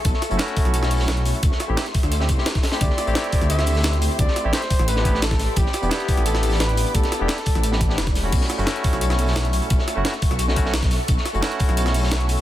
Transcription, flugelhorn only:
\new Staff \with { instrumentName = "Flugelhorn" } { \time 4/4 \key a \lydian \tempo 4 = 174 a'2. r4 | r1 | d''2 e''4. r8 | d''4 c''4 b'4 a'4 |
g'2 a'4 b'4 | a'2. r4 | r1 | r1 |
r1 | }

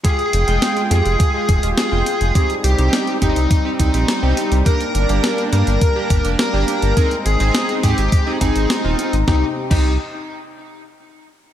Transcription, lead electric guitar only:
\new Staff \with { instrumentName = "Lead electric guitar" } { \time 4/4 \key c \minor \tempo 4 = 104 aes'4~ aes'16 r16 aes'4~ aes'16 r16 aes'4~ | aes'16 r16 g'8. r16 ees'8. r16 ees'4~ ees'16 r16 | bes'4~ bes'16 r16 bes'4~ bes'16 r16 bes'4~ | bes'16 r16 aes'8. r16 g'8. r16 ees'4~ ees'16 r16 |
ees'16 r8 ees'8 r2 r8. | }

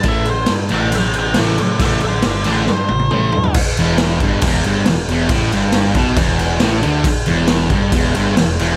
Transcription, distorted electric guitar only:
\new Staff \with { instrumentName = "Distorted electric guitar" } { \clef bass \time 4/4 \key e \minor \tempo 4 = 137 <a, e a>8 r4 <a, e a>8 r4 <a, e a>8 r8 | <a, e a>8 r4 <a, e a>8 r4 <a, e a>8 r8 | r8 e,4 g,8 e,8 g,8 e,8 e,8 | a,8 g,4 b,8 e,4 a,8 d8 |
r8 e,4 g,8 e,8 g,8 e,8 e,8 | }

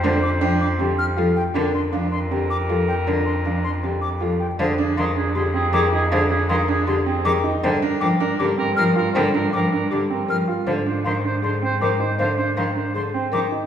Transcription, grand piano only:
\new Staff \with { instrumentName = "Grand piano" } { \time 4/4 \key g \dorian \tempo 4 = 158 d'8 r8 d'8 r8 c'8 r8 f'8 r8 | d'8 r8 d'8 r8 c'8 r8 f'8 r8 | d'8 r8 d'8 r8 c'8 r8 f'8 r8 | \key f \dorian r8 d'8 r8 d'8 r8 c'8 r8 ees'8 |
r8 d'8 r8 d'8 r8 c'8 r8 ees'8 | r8 d'8 r8 d'8 r8 c'8 r8 f'8 | r8 d'8 r8 d'8 r8 c'8 r8 f'8 | r8 d'8 r8 d'8 r8 c'8 r8 ees'8 |
r8 d'8 r8 d'8 r8 c'8 r8 ees'8 | }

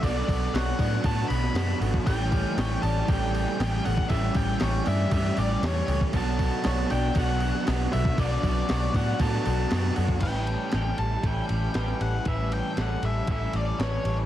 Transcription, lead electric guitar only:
\new Staff \with { instrumentName = "Lead electric guitar" } { \time 4/4 \key a \mixolydian \tempo 4 = 118 d''4 fis''4 a''8 b''4 r8 | g''4. a''8 g''4. fis''8 | e''8 g''4 e''8 e''8 d''8 cis''8. r16 | a''4. g''8 fis''4 r8 e''8 |
d''4. fis''8 a''4. r8 | g''4. a''8 g''4. fis''8 | e''8 g''8 fis''8 e''8 e''8 d''8 cis''8. r16 | }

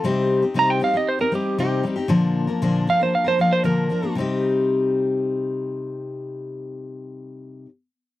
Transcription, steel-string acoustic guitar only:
\new Staff \with { instrumentName = "Steel-string acoustic guitar" } { \time 4/4 \key c \minor \tempo 4 = 117 <c g c' ees' g'>8. <c' ees' g'>16 <c g c' ees' g'>8 <g c' ees' g'>16 <c' ees' g'>8 <c' ees' g'>16 <g c' ees' g'>8 <c g c' ees' g'>8 <g c' ees' g'>16 <c' ees' g'>16 | <bes, d f bes d' bes'>8. <f bes d' bes'>16 <bes, d f bes d' bes'>8 <f bes d' bes'>16 <f bes d' bes'>8 <f bes d' bes'>16 <f bes d' bes'>8 <bes, d f bes d' bes'>8 <f bes d' bes'>16 <f bes d' bes'>16 | <c g c' ees' g'>1~ | <c g c' ees' g'>1 | }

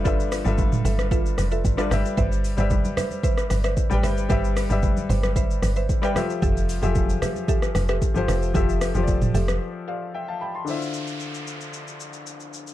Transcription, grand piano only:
\new Staff \with { instrumentName = "Grand piano" } { \time 4/4 \key d \dorian \tempo 4 = 113 << { r1 | r1 | r1 | r1 |
r2 r8 <d'' f''>8 <e'' g''>16 <f'' a''>16 <g'' b''>16 <a'' c'''>16~ | <a'' c'''>16 r2. r8. | } \\ { <g d' f' a' b' e''>8 r16 <g d' f' a' b' e''>4. r4 <g d' f' a' b' d''>16 <g g' b' d'' e''>8~ | <g g' b' d'' e''>8 r16 <g g' b' d'' e''>4. r4 <g g' b' d'' g''>8 r16 | <g g' b' d'' e''>8 r16 <g g' b' d'' e''>4. r4 <g g' b' d'' g''>16 <f f' g' a' e''>8~ | <f f' g' a' e''>8 r16 <f f' g' gis' a' e''>4. r4 <f f' g' a' c''>8 r16 |
<f f' g' a' e''>8 r16 <f f' g' a' c'' d''>4. r4. r16 | <d d' e' f' c'' e''>1 | } >> }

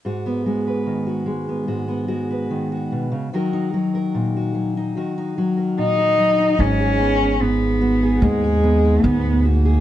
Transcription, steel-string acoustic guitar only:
\new Staff \with { instrumentName = "Steel-string acoustic guitar" } { \time 4/4 \key gis \minor \tempo 4 = 73 << { fis'16 b16 fis'16 b'8 fis'8 b16 fis'16 b16 fis'16 b'8 fis'8. | <fis dis' fis' ais'>16 dis'16 fis'16 ais'8 fis'8 dis'16 fis'16 dis'16 fis'16 ais'8 fis'8 dis'16 | dis'16 gis'8 dis'8. fis'16 gis'16 dis'16 gis'8 dis'8. fis'16 gis'16 | } \\ { gis,8 gis8 dis8 gis8 gis,8 gis8 dis8 b,16 cis16 | dis8 fis8 ais,8 fis8 dis8 fis8 ais,8 fis8 | gis,8 b8 gis,8 b8 gis,8 b8 gis,4 | } >> }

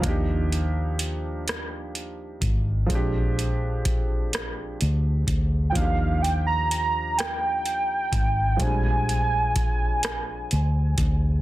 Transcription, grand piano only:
\new Staff \with { instrumentName = "Grand piano" } { \time 6/8 \key ees \major \tempo 4. = 42 <f bes d' ees' g'>2. | <f aes c' d' g'>2. | <f bes d' ees' g'>2. | <f g aes c' d'>2. | }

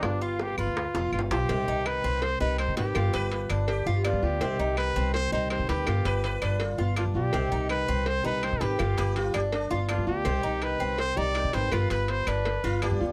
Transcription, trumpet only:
\new Staff \with { instrumentName = "Trumpet" } { \time 4/4 \key c \minor \tempo 4 = 164 d'8 f'8 g'8 f'4. f'8 g'8~ | g'4 b'4 c''8 b'8 c''8 g'8~ | g'4. r4. f'8 g'8~ | g'4 b'4 c''8 c''8 c''8 g'8~ |
g'4. r4. f'8 g'8~ | g'4 b'4 c''8 b'8 c''8 g'8~ | g'4. r4. f'8 g'8~ | g'4 b'4 c''8 d''4 c''8 |
b'8 b'8 c''8 b'2 r8 | }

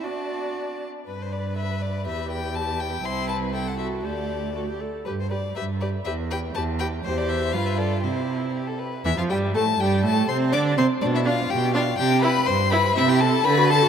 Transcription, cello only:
\new Staff \with { instrumentName = "Cello" } { \clef bass \time 2/4 \key g \major \tempo 4 = 122 fis'4. r8 | g,2 | e,2 | c,2 |
d,4. r8 | g,4 g,4 | e,4 e,4 | \key c \major e,4 g,4 |
c4. r8 | e,16 f,16 g,8 a,8 g,8 | a,8 c8 d8 c8 | b,4 b,4 |
c4 g,4 | \key a \dorian c4 d4 | }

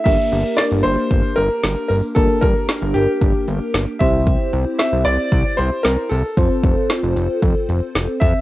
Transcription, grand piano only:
\new Staff \with { instrumentName = "Grand piano" } { \time 4/4 \key g \dorian \tempo 4 = 114 e''4 d''8 c''4 bes'4 bes'8 | a'8 bes'4 g'2 e''8~ | e''8 r8 e''8 d''4 c''8 bes'8 a'8~ | a'4 r2 r8 e''8 | }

